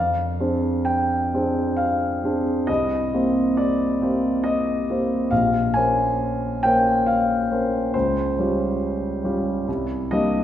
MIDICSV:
0, 0, Header, 1, 2, 480
1, 0, Start_track
1, 0, Key_signature, -4, "minor"
1, 0, Tempo, 925926
1, 924, Tempo, 896861
1, 1407, Time_signature, 3, 2, 24, 8
1, 1884, Tempo, 872093
1, 5661, End_track
2, 0, Start_track
2, 0, Title_t, "Grand piano"
2, 0, Program_c, 0, 0
2, 0, Note_on_c, 0, 41, 38
2, 0, Note_on_c, 0, 77, 62
2, 59, Control_c, 0, 64, 127
2, 195, Note_off_c, 0, 41, 0
2, 208, Note_on_c, 0, 60, 27
2, 210, Note_on_c, 0, 62, 28
2, 210, Note_on_c, 0, 68, 26
2, 211, Note_on_c, 0, 72, 31
2, 440, Note_off_c, 0, 77, 0
2, 440, Note_on_c, 0, 79, 59
2, 669, Note_off_c, 0, 60, 0
2, 670, Note_off_c, 0, 62, 0
2, 670, Note_off_c, 0, 68, 0
2, 670, Note_off_c, 0, 72, 0
2, 695, Note_on_c, 0, 60, 31
2, 698, Note_on_c, 0, 62, 30
2, 698, Note_on_c, 0, 68, 29
2, 699, Note_on_c, 0, 72, 32
2, 915, Note_on_c, 0, 77, 60
2, 921, Note_off_c, 0, 79, 0
2, 1149, Note_off_c, 0, 60, 0
2, 1150, Note_off_c, 0, 62, 0
2, 1150, Note_off_c, 0, 68, 0
2, 1151, Note_off_c, 0, 72, 0
2, 1168, Note_on_c, 0, 60, 29
2, 1172, Note_on_c, 0, 62, 28
2, 1172, Note_on_c, 0, 68, 28
2, 1176, Note_on_c, 0, 72, 30
2, 1387, Note_off_c, 0, 60, 0
2, 1388, Note_off_c, 0, 62, 0
2, 1388, Note_off_c, 0, 68, 0
2, 1390, Note_off_c, 0, 72, 0
2, 1399, Note_on_c, 0, 75, 64
2, 1402, Note_off_c, 0, 77, 0
2, 1407, Note_on_c, 0, 36, 40
2, 1416, Control_c, 0, 64, 0
2, 1505, Control_c, 0, 64, 127
2, 1640, Note_off_c, 0, 36, 0
2, 1650, Note_on_c, 0, 58, 29
2, 1651, Note_on_c, 0, 60, 28
2, 1654, Note_on_c, 0, 72, 32
2, 1655, Note_on_c, 0, 67, 28
2, 1880, Note_off_c, 0, 75, 0
2, 1882, Note_on_c, 0, 74, 55
2, 2105, Note_off_c, 0, 58, 0
2, 2105, Note_off_c, 0, 60, 0
2, 2107, Note_off_c, 0, 67, 0
2, 2107, Note_off_c, 0, 72, 0
2, 2126, Note_on_c, 0, 58, 29
2, 2130, Note_on_c, 0, 60, 32
2, 2131, Note_on_c, 0, 67, 30
2, 2135, Note_on_c, 0, 72, 32
2, 2357, Note_on_c, 0, 75, 60
2, 2363, Note_off_c, 0, 74, 0
2, 2579, Note_off_c, 0, 58, 0
2, 2581, Note_off_c, 0, 60, 0
2, 2582, Note_off_c, 0, 67, 0
2, 2584, Note_off_c, 0, 72, 0
2, 2610, Note_on_c, 0, 58, 29
2, 2614, Note_on_c, 0, 60, 28
2, 2614, Note_on_c, 0, 67, 29
2, 2619, Note_on_c, 0, 72, 29
2, 2824, Note_off_c, 0, 58, 0
2, 2825, Note_off_c, 0, 60, 0
2, 2826, Note_off_c, 0, 67, 0
2, 2828, Note_off_c, 0, 72, 0
2, 2837, Note_off_c, 0, 75, 0
2, 2837, Note_on_c, 0, 77, 63
2, 2842, Note_on_c, 0, 34, 41
2, 2849, Control_c, 0, 64, 0
2, 2948, Control_c, 0, 64, 127
2, 3073, Note_on_c, 0, 80, 66
2, 3079, Note_off_c, 0, 34, 0
2, 3080, Note_on_c, 0, 58, 29
2, 3084, Note_off_c, 0, 77, 0
2, 3086, Note_on_c, 0, 61, 29
2, 3087, Note_on_c, 0, 72, 33
2, 3088, Note_on_c, 0, 70, 29
2, 3543, Note_off_c, 0, 58, 0
2, 3546, Note_off_c, 0, 61, 0
2, 3547, Note_off_c, 0, 70, 0
2, 3547, Note_off_c, 0, 72, 0
2, 3562, Note_off_c, 0, 80, 0
2, 3564, Note_on_c, 0, 79, 70
2, 3572, Note_on_c, 0, 61, 31
2, 3574, Note_on_c, 0, 58, 31
2, 3578, Note_on_c, 0, 70, 30
2, 3579, Note_on_c, 0, 72, 33
2, 3804, Note_on_c, 0, 77, 65
2, 3805, Note_off_c, 0, 79, 0
2, 4026, Note_off_c, 0, 61, 0
2, 4027, Note_off_c, 0, 58, 0
2, 4028, Note_off_c, 0, 70, 0
2, 4029, Note_off_c, 0, 72, 0
2, 4051, Note_on_c, 0, 58, 29
2, 4051, Note_on_c, 0, 70, 28
2, 4053, Note_on_c, 0, 61, 29
2, 4058, Note_on_c, 0, 72, 32
2, 4266, Note_off_c, 0, 58, 0
2, 4266, Note_off_c, 0, 70, 0
2, 4267, Note_off_c, 0, 61, 0
2, 4270, Note_off_c, 0, 72, 0
2, 4284, Note_off_c, 0, 77, 0
2, 4285, Note_on_c, 0, 72, 60
2, 4292, Note_on_c, 0, 37, 43
2, 4294, Control_c, 0, 64, 0
2, 4398, Control_c, 0, 64, 127
2, 4521, Note_off_c, 0, 37, 0
2, 4532, Note_on_c, 0, 61, 33
2, 4534, Note_on_c, 0, 55, 32
2, 4537, Note_on_c, 0, 65, 30
2, 4538, Note_on_c, 0, 67, 33
2, 4983, Note_off_c, 0, 61, 0
2, 4984, Note_off_c, 0, 55, 0
2, 4985, Note_off_c, 0, 65, 0
2, 4986, Note_off_c, 0, 67, 0
2, 5001, Note_off_c, 0, 72, 0
2, 5001, Note_on_c, 0, 55, 33
2, 5001, Note_on_c, 0, 61, 32
2, 5005, Note_on_c, 0, 65, 33
2, 5006, Note_on_c, 0, 67, 36
2, 5219, Note_off_c, 0, 55, 0
2, 5219, Note_off_c, 0, 61, 0
2, 5220, Note_off_c, 0, 65, 0
2, 5221, Note_off_c, 0, 67, 0
2, 5242, Note_on_c, 0, 36, 43
2, 5249, Control_c, 0, 64, 0
2, 5335, Control_c, 0, 64, 127
2, 5476, Note_off_c, 0, 36, 0
2, 5480, Note_on_c, 0, 75, 63
2, 5487, Note_on_c, 0, 55, 34
2, 5488, Note_on_c, 0, 58, 33
2, 5491, Note_on_c, 0, 62, 31
2, 5494, Note_on_c, 0, 67, 35
2, 5661, Note_off_c, 0, 55, 0
2, 5661, Note_off_c, 0, 58, 0
2, 5661, Note_off_c, 0, 62, 0
2, 5661, Note_off_c, 0, 67, 0
2, 5661, Note_off_c, 0, 75, 0
2, 5661, End_track
0, 0, End_of_file